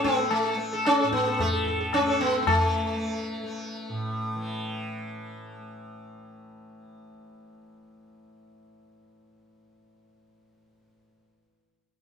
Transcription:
0, 0, Header, 1, 4, 480
1, 0, Start_track
1, 0, Tempo, 537153
1, 275, Time_signature, 4, 2, 24, 8
1, 3630, Tempo, 523104
1, 10926, End_track
2, 0, Start_track
2, 0, Title_t, "Sitar"
2, 0, Program_c, 0, 104
2, 0, Note_on_c, 0, 69, 44
2, 38, Note_on_c, 0, 59, 103
2, 139, Note_off_c, 0, 69, 0
2, 271, Note_off_c, 0, 59, 0
2, 274, Note_on_c, 0, 57, 80
2, 399, Note_on_c, 0, 69, 42
2, 502, Note_off_c, 0, 57, 0
2, 625, Note_off_c, 0, 69, 0
2, 651, Note_on_c, 0, 69, 50
2, 772, Note_on_c, 0, 61, 123
2, 872, Note_off_c, 0, 69, 0
2, 896, Note_on_c, 0, 69, 39
2, 1001, Note_off_c, 0, 61, 0
2, 1005, Note_on_c, 0, 59, 89
2, 1115, Note_off_c, 0, 69, 0
2, 1137, Note_on_c, 0, 69, 43
2, 1254, Note_off_c, 0, 59, 0
2, 1255, Note_on_c, 0, 57, 96
2, 1357, Note_off_c, 0, 69, 0
2, 1368, Note_on_c, 0, 69, 44
2, 1476, Note_off_c, 0, 57, 0
2, 1488, Note_off_c, 0, 69, 0
2, 1498, Note_on_c, 0, 69, 43
2, 1602, Note_off_c, 0, 69, 0
2, 1613, Note_on_c, 0, 69, 46
2, 1731, Note_on_c, 0, 61, 114
2, 1835, Note_off_c, 0, 69, 0
2, 1849, Note_on_c, 0, 69, 43
2, 1970, Note_off_c, 0, 61, 0
2, 1973, Note_on_c, 0, 59, 112
2, 2072, Note_off_c, 0, 69, 0
2, 2156, Note_off_c, 0, 59, 0
2, 2167, Note_on_c, 0, 59, 64
2, 2207, Note_off_c, 0, 59, 0
2, 2211, Note_on_c, 0, 57, 85
2, 5013, Note_off_c, 0, 57, 0
2, 10926, End_track
3, 0, Start_track
3, 0, Title_t, "Tanpura"
3, 0, Program_c, 1, 104
3, 0, Note_on_c, 1, 45, 63
3, 0, Note_on_c, 1, 52, 70
3, 0, Note_on_c, 1, 57, 66
3, 48, Note_off_c, 1, 57, 0
3, 48, Note_on_c, 1, 57, 69
3, 484, Note_off_c, 1, 57, 0
3, 484, Note_on_c, 1, 57, 70
3, 917, Note_off_c, 1, 45, 0
3, 920, Note_on_c, 1, 45, 66
3, 1347, Note_off_c, 1, 52, 0
3, 1350, Note_on_c, 1, 52, 72
3, 1781, Note_off_c, 1, 57, 0
3, 1781, Note_on_c, 1, 57, 63
3, 2205, Note_off_c, 1, 52, 0
3, 2205, Note_on_c, 1, 52, 57
3, 2626, Note_off_c, 1, 57, 0
3, 2626, Note_on_c, 1, 57, 68
3, 3062, Note_off_c, 1, 57, 0
3, 3062, Note_on_c, 1, 57, 65
3, 3474, Note_off_c, 1, 45, 0
3, 3478, Note_on_c, 1, 45, 70
3, 3900, Note_off_c, 1, 52, 0
3, 3900, Note_on_c, 1, 52, 72
3, 8646, Note_off_c, 1, 57, 0
3, 10034, Note_off_c, 1, 45, 0
3, 10461, Note_off_c, 1, 52, 0
3, 10926, End_track
4, 0, Start_track
4, 0, Title_t, "Tabla"
4, 40, Note_on_c, 9, 37, 76
4, 129, Note_off_c, 9, 37, 0
4, 160, Note_on_c, 9, 62, 73
4, 249, Note_off_c, 9, 62, 0
4, 273, Note_on_c, 9, 60, 85
4, 362, Note_off_c, 9, 60, 0
4, 516, Note_on_c, 9, 62, 70
4, 605, Note_off_c, 9, 62, 0
4, 763, Note_on_c, 9, 60, 85
4, 853, Note_off_c, 9, 60, 0
4, 1000, Note_on_c, 9, 37, 67
4, 1089, Note_off_c, 9, 37, 0
4, 1120, Note_on_c, 9, 62, 79
4, 1209, Note_off_c, 9, 62, 0
4, 1244, Note_on_c, 9, 60, 90
4, 1244, Note_on_c, 9, 64, 84
4, 1333, Note_off_c, 9, 60, 0
4, 1333, Note_off_c, 9, 64, 0
4, 1482, Note_on_c, 9, 64, 64
4, 1572, Note_off_c, 9, 64, 0
4, 1724, Note_on_c, 9, 60, 86
4, 1724, Note_on_c, 9, 64, 78
4, 1813, Note_off_c, 9, 60, 0
4, 1813, Note_off_c, 9, 64, 0
4, 1972, Note_on_c, 9, 62, 79
4, 2061, Note_off_c, 9, 62, 0
4, 2208, Note_on_c, 9, 60, 127
4, 2208, Note_on_c, 9, 64, 118
4, 2297, Note_off_c, 9, 60, 0
4, 2297, Note_off_c, 9, 64, 0
4, 10926, End_track
0, 0, End_of_file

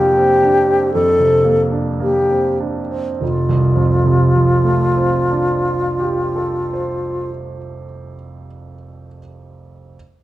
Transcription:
0, 0, Header, 1, 3, 480
1, 0, Start_track
1, 0, Key_signature, -1, "major"
1, 0, Tempo, 1010101
1, 440, Tempo, 1079137
1, 920, Tempo, 1200000
1, 1400, Time_signature, 4, 2, 24, 8
1, 1400, Tempo, 1132075
1, 4380, End_track
2, 0, Start_track
2, 0, Title_t, "Alto flute"
2, 0, Program_c, 0, 73
2, 0, Note_on_c, 0, 67, 65
2, 441, Note_off_c, 0, 67, 0
2, 445, Note_on_c, 0, 69, 64
2, 752, Note_off_c, 0, 69, 0
2, 928, Note_on_c, 0, 67, 45
2, 1148, Note_off_c, 0, 67, 0
2, 1401, Note_on_c, 0, 65, 41
2, 3137, Note_off_c, 0, 65, 0
2, 4380, End_track
3, 0, Start_track
3, 0, Title_t, "Grand piano"
3, 0, Program_c, 1, 0
3, 0, Control_c, 1, 64, 127
3, 0, Note_on_c, 1, 41, 47
3, 0, Note_on_c, 1, 48, 32
3, 0, Note_on_c, 1, 58, 36
3, 0, Note_on_c, 1, 62, 37
3, 83, Note_on_c, 1, 60, 34
3, 150, Note_off_c, 1, 58, 0
3, 205, Note_off_c, 1, 62, 0
3, 205, Note_on_c, 1, 62, 36
3, 272, Note_off_c, 1, 60, 0
3, 321, Note_on_c, 1, 60, 33
3, 394, Note_off_c, 1, 62, 0
3, 422, Note_off_c, 1, 41, 0
3, 449, Note_on_c, 1, 41, 38
3, 511, Note_off_c, 1, 60, 0
3, 561, Note_off_c, 1, 48, 0
3, 561, Note_on_c, 1, 48, 31
3, 671, Note_on_c, 1, 58, 30
3, 749, Note_off_c, 1, 48, 0
3, 792, Note_on_c, 1, 62, 31
3, 869, Note_off_c, 1, 58, 0
3, 918, Note_on_c, 1, 58, 33
3, 989, Note_off_c, 1, 62, 0
3, 1041, Note_on_c, 1, 60, 29
3, 1109, Note_off_c, 1, 58, 0
3, 1158, Note_on_c, 1, 62, 28
3, 1236, Note_off_c, 1, 60, 0
3, 1284, Note_on_c, 1, 60, 28
3, 1353, Note_off_c, 1, 62, 0
3, 1388, Note_off_c, 1, 41, 0
3, 1400, Note_off_c, 1, 60, 0
3, 1401, Note_on_c, 1, 29, 35
3, 1411, Control_c, 1, 64, 0
3, 1514, Control_c, 1, 64, 127
3, 1520, Note_on_c, 1, 36, 33
3, 1632, Note_on_c, 1, 41, 30
3, 1760, Note_on_c, 1, 48, 31
3, 1887, Note_on_c, 1, 53, 31
3, 2010, Note_on_c, 1, 57, 28
3, 2148, Note_on_c, 1, 60, 28
3, 2292, Note_on_c, 1, 62, 27
3, 2437, Note_on_c, 1, 65, 27
3, 2583, Note_on_c, 1, 67, 28
3, 2736, Note_on_c, 1, 69, 25
3, 2896, Note_on_c, 1, 72, 24
3, 3137, Note_off_c, 1, 29, 0
3, 3256, Note_off_c, 1, 36, 0
3, 3368, Note_off_c, 1, 41, 0
3, 3496, Note_off_c, 1, 48, 0
3, 3623, Note_off_c, 1, 53, 0
3, 3745, Note_off_c, 1, 57, 0
3, 3883, Note_off_c, 1, 60, 0
3, 3937, Note_off_c, 1, 69, 0
3, 3937, Note_off_c, 1, 72, 0
3, 3938, Note_off_c, 1, 67, 0
3, 3941, Note_off_c, 1, 62, 0
3, 3941, Note_off_c, 1, 65, 0
3, 4263, Control_c, 1, 64, 0
3, 4380, End_track
0, 0, End_of_file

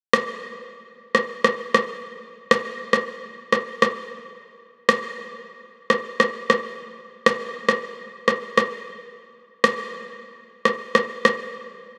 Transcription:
0, 0, Header, 1, 2, 480
1, 0, Start_track
1, 0, Tempo, 594059
1, 1650, Time_signature, 4, 2, 24, 8
1, 9684, End_track
2, 0, Start_track
2, 0, Title_t, "Drums"
2, 109, Note_on_c, 9, 37, 100
2, 189, Note_off_c, 9, 37, 0
2, 927, Note_on_c, 9, 37, 81
2, 1008, Note_off_c, 9, 37, 0
2, 1167, Note_on_c, 9, 37, 89
2, 1248, Note_off_c, 9, 37, 0
2, 1410, Note_on_c, 9, 37, 94
2, 1491, Note_off_c, 9, 37, 0
2, 2029, Note_on_c, 9, 37, 99
2, 2110, Note_off_c, 9, 37, 0
2, 2368, Note_on_c, 9, 37, 87
2, 2449, Note_off_c, 9, 37, 0
2, 2848, Note_on_c, 9, 37, 82
2, 2929, Note_off_c, 9, 37, 0
2, 3088, Note_on_c, 9, 37, 89
2, 3169, Note_off_c, 9, 37, 0
2, 3949, Note_on_c, 9, 37, 102
2, 4030, Note_off_c, 9, 37, 0
2, 4768, Note_on_c, 9, 37, 81
2, 4848, Note_off_c, 9, 37, 0
2, 5009, Note_on_c, 9, 37, 89
2, 5090, Note_off_c, 9, 37, 0
2, 5251, Note_on_c, 9, 37, 87
2, 5332, Note_off_c, 9, 37, 0
2, 5869, Note_on_c, 9, 37, 100
2, 5950, Note_off_c, 9, 37, 0
2, 6210, Note_on_c, 9, 37, 90
2, 6291, Note_off_c, 9, 37, 0
2, 6689, Note_on_c, 9, 37, 80
2, 6769, Note_off_c, 9, 37, 0
2, 6929, Note_on_c, 9, 37, 90
2, 7009, Note_off_c, 9, 37, 0
2, 7789, Note_on_c, 9, 37, 105
2, 7870, Note_off_c, 9, 37, 0
2, 8608, Note_on_c, 9, 37, 81
2, 8689, Note_off_c, 9, 37, 0
2, 8848, Note_on_c, 9, 37, 93
2, 8928, Note_off_c, 9, 37, 0
2, 9090, Note_on_c, 9, 37, 93
2, 9171, Note_off_c, 9, 37, 0
2, 9684, End_track
0, 0, End_of_file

